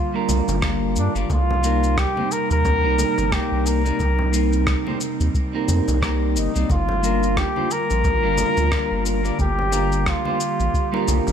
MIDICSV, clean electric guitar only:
0, 0, Header, 1, 2, 480
1, 0, Start_track
1, 0, Key_signature, -2, "minor"
1, 0, Tempo, 674157
1, 926, Time_signature, 4, 2, 24, 8
1, 8061, End_track
2, 0, Start_track
2, 0, Title_t, "Clean electric guitar"
2, 0, Program_c, 0, 27
2, 97, Note_on_c, 0, 55, 78
2, 102, Note_on_c, 0, 58, 76
2, 108, Note_on_c, 0, 62, 72
2, 108, Note_on_c, 0, 65, 73
2, 111, Note_on_c, 0, 70, 89
2, 418, Note_off_c, 0, 55, 0
2, 421, Note_off_c, 0, 58, 0
2, 422, Note_off_c, 0, 62, 0
2, 423, Note_off_c, 0, 65, 0
2, 425, Note_off_c, 0, 70, 0
2, 436, Note_on_c, 0, 55, 86
2, 439, Note_on_c, 0, 58, 81
2, 445, Note_on_c, 0, 62, 66
2, 447, Note_on_c, 0, 65, 78
2, 452, Note_on_c, 0, 70, 87
2, 786, Note_off_c, 0, 55, 0
2, 789, Note_off_c, 0, 58, 0
2, 790, Note_off_c, 0, 62, 0
2, 792, Note_off_c, 0, 65, 0
2, 794, Note_off_c, 0, 70, 0
2, 821, Note_on_c, 0, 55, 63
2, 823, Note_on_c, 0, 58, 60
2, 829, Note_on_c, 0, 62, 57
2, 830, Note_on_c, 0, 65, 57
2, 836, Note_on_c, 0, 74, 61
2, 905, Note_off_c, 0, 55, 0
2, 907, Note_off_c, 0, 58, 0
2, 908, Note_off_c, 0, 62, 0
2, 910, Note_off_c, 0, 65, 0
2, 912, Note_off_c, 0, 74, 0
2, 1160, Note_on_c, 0, 55, 65
2, 1164, Note_on_c, 0, 58, 59
2, 1167, Note_on_c, 0, 60, 61
2, 1170, Note_on_c, 0, 63, 61
2, 1174, Note_on_c, 0, 70, 75
2, 1508, Note_off_c, 0, 55, 0
2, 1510, Note_off_c, 0, 58, 0
2, 1512, Note_off_c, 0, 60, 0
2, 1514, Note_off_c, 0, 63, 0
2, 1516, Note_off_c, 0, 70, 0
2, 1540, Note_on_c, 0, 58, 63
2, 1541, Note_on_c, 0, 55, 60
2, 1545, Note_on_c, 0, 60, 68
2, 1548, Note_on_c, 0, 63, 64
2, 1553, Note_on_c, 0, 72, 71
2, 1624, Note_off_c, 0, 55, 0
2, 1625, Note_off_c, 0, 58, 0
2, 1627, Note_off_c, 0, 60, 0
2, 1629, Note_off_c, 0, 63, 0
2, 1630, Note_off_c, 0, 72, 0
2, 2017, Note_on_c, 0, 58, 72
2, 2018, Note_on_c, 0, 55, 73
2, 2023, Note_on_c, 0, 60, 68
2, 2023, Note_on_c, 0, 63, 79
2, 2029, Note_on_c, 0, 70, 93
2, 2337, Note_off_c, 0, 55, 0
2, 2338, Note_off_c, 0, 58, 0
2, 2340, Note_off_c, 0, 60, 0
2, 2341, Note_off_c, 0, 63, 0
2, 2344, Note_off_c, 0, 70, 0
2, 2361, Note_on_c, 0, 55, 86
2, 2364, Note_on_c, 0, 58, 86
2, 2368, Note_on_c, 0, 60, 71
2, 2369, Note_on_c, 0, 63, 81
2, 2373, Note_on_c, 0, 70, 97
2, 2709, Note_off_c, 0, 55, 0
2, 2711, Note_off_c, 0, 58, 0
2, 2712, Note_off_c, 0, 60, 0
2, 2713, Note_off_c, 0, 63, 0
2, 2715, Note_off_c, 0, 70, 0
2, 2739, Note_on_c, 0, 55, 65
2, 2741, Note_on_c, 0, 58, 61
2, 2747, Note_on_c, 0, 63, 64
2, 2748, Note_on_c, 0, 60, 52
2, 2752, Note_on_c, 0, 74, 56
2, 2824, Note_off_c, 0, 55, 0
2, 2826, Note_off_c, 0, 58, 0
2, 2827, Note_off_c, 0, 60, 0
2, 2829, Note_off_c, 0, 63, 0
2, 2830, Note_off_c, 0, 74, 0
2, 3078, Note_on_c, 0, 55, 68
2, 3081, Note_on_c, 0, 58, 65
2, 3088, Note_on_c, 0, 60, 51
2, 3090, Note_on_c, 0, 63, 59
2, 3093, Note_on_c, 0, 70, 69
2, 3427, Note_off_c, 0, 55, 0
2, 3430, Note_off_c, 0, 58, 0
2, 3431, Note_off_c, 0, 60, 0
2, 3433, Note_off_c, 0, 63, 0
2, 3435, Note_off_c, 0, 70, 0
2, 3458, Note_on_c, 0, 55, 68
2, 3461, Note_on_c, 0, 58, 66
2, 3466, Note_on_c, 0, 60, 60
2, 3470, Note_on_c, 0, 63, 62
2, 3473, Note_on_c, 0, 72, 72
2, 3544, Note_off_c, 0, 55, 0
2, 3546, Note_off_c, 0, 58, 0
2, 3548, Note_off_c, 0, 60, 0
2, 3550, Note_off_c, 0, 63, 0
2, 3551, Note_off_c, 0, 72, 0
2, 3939, Note_on_c, 0, 55, 76
2, 3945, Note_on_c, 0, 58, 77
2, 3950, Note_on_c, 0, 60, 71
2, 3950, Note_on_c, 0, 63, 77
2, 3954, Note_on_c, 0, 70, 87
2, 4259, Note_off_c, 0, 55, 0
2, 4262, Note_off_c, 0, 58, 0
2, 4263, Note_off_c, 0, 60, 0
2, 4265, Note_off_c, 0, 63, 0
2, 4266, Note_off_c, 0, 70, 0
2, 4282, Note_on_c, 0, 55, 76
2, 4282, Note_on_c, 0, 58, 83
2, 4285, Note_on_c, 0, 60, 81
2, 4287, Note_on_c, 0, 63, 73
2, 4294, Note_on_c, 0, 70, 85
2, 4628, Note_off_c, 0, 55, 0
2, 4630, Note_off_c, 0, 58, 0
2, 4631, Note_off_c, 0, 60, 0
2, 4633, Note_off_c, 0, 63, 0
2, 4634, Note_off_c, 0, 70, 0
2, 4657, Note_on_c, 0, 55, 62
2, 4663, Note_on_c, 0, 58, 61
2, 4665, Note_on_c, 0, 60, 61
2, 4672, Note_on_c, 0, 63, 49
2, 4673, Note_on_c, 0, 74, 67
2, 4744, Note_off_c, 0, 55, 0
2, 4746, Note_off_c, 0, 58, 0
2, 4748, Note_off_c, 0, 60, 0
2, 4749, Note_off_c, 0, 63, 0
2, 4751, Note_off_c, 0, 74, 0
2, 5003, Note_on_c, 0, 55, 72
2, 5007, Note_on_c, 0, 58, 65
2, 5010, Note_on_c, 0, 62, 61
2, 5016, Note_on_c, 0, 65, 52
2, 5017, Note_on_c, 0, 70, 76
2, 5350, Note_off_c, 0, 55, 0
2, 5352, Note_off_c, 0, 58, 0
2, 5354, Note_off_c, 0, 62, 0
2, 5355, Note_off_c, 0, 65, 0
2, 5357, Note_off_c, 0, 70, 0
2, 5379, Note_on_c, 0, 55, 71
2, 5383, Note_on_c, 0, 58, 66
2, 5386, Note_on_c, 0, 62, 67
2, 5391, Note_on_c, 0, 65, 52
2, 5391, Note_on_c, 0, 72, 83
2, 5465, Note_off_c, 0, 55, 0
2, 5466, Note_off_c, 0, 58, 0
2, 5469, Note_off_c, 0, 62, 0
2, 5470, Note_off_c, 0, 65, 0
2, 5471, Note_off_c, 0, 72, 0
2, 5856, Note_on_c, 0, 55, 78
2, 5859, Note_on_c, 0, 58, 70
2, 5863, Note_on_c, 0, 62, 71
2, 5867, Note_on_c, 0, 65, 77
2, 5873, Note_on_c, 0, 70, 79
2, 6177, Note_off_c, 0, 55, 0
2, 6179, Note_off_c, 0, 58, 0
2, 6181, Note_off_c, 0, 62, 0
2, 6184, Note_off_c, 0, 65, 0
2, 6184, Note_off_c, 0, 70, 0
2, 6198, Note_on_c, 0, 55, 96
2, 6203, Note_on_c, 0, 58, 77
2, 6205, Note_on_c, 0, 62, 79
2, 6207, Note_on_c, 0, 65, 80
2, 6213, Note_on_c, 0, 70, 77
2, 6548, Note_off_c, 0, 55, 0
2, 6549, Note_off_c, 0, 58, 0
2, 6551, Note_off_c, 0, 62, 0
2, 6552, Note_off_c, 0, 65, 0
2, 6554, Note_off_c, 0, 70, 0
2, 6575, Note_on_c, 0, 55, 62
2, 6580, Note_on_c, 0, 58, 51
2, 6580, Note_on_c, 0, 62, 54
2, 6587, Note_on_c, 0, 65, 56
2, 6588, Note_on_c, 0, 74, 71
2, 6663, Note_off_c, 0, 55, 0
2, 6664, Note_off_c, 0, 58, 0
2, 6666, Note_off_c, 0, 62, 0
2, 6667, Note_off_c, 0, 65, 0
2, 6669, Note_off_c, 0, 74, 0
2, 6918, Note_on_c, 0, 55, 74
2, 6923, Note_on_c, 0, 58, 57
2, 6923, Note_on_c, 0, 62, 58
2, 6925, Note_on_c, 0, 65, 67
2, 6932, Note_on_c, 0, 70, 65
2, 7268, Note_off_c, 0, 55, 0
2, 7268, Note_off_c, 0, 58, 0
2, 7270, Note_off_c, 0, 62, 0
2, 7272, Note_off_c, 0, 65, 0
2, 7273, Note_off_c, 0, 70, 0
2, 7296, Note_on_c, 0, 55, 74
2, 7300, Note_on_c, 0, 58, 57
2, 7302, Note_on_c, 0, 62, 67
2, 7308, Note_on_c, 0, 72, 79
2, 7309, Note_on_c, 0, 65, 56
2, 7383, Note_off_c, 0, 55, 0
2, 7384, Note_off_c, 0, 58, 0
2, 7387, Note_off_c, 0, 62, 0
2, 7388, Note_off_c, 0, 65, 0
2, 7389, Note_off_c, 0, 72, 0
2, 7776, Note_on_c, 0, 55, 85
2, 7781, Note_on_c, 0, 58, 77
2, 7787, Note_on_c, 0, 62, 64
2, 7787, Note_on_c, 0, 65, 76
2, 7790, Note_on_c, 0, 70, 89
2, 8061, Note_off_c, 0, 55, 0
2, 8061, Note_off_c, 0, 58, 0
2, 8061, Note_off_c, 0, 62, 0
2, 8061, Note_off_c, 0, 65, 0
2, 8061, Note_off_c, 0, 70, 0
2, 8061, End_track
0, 0, End_of_file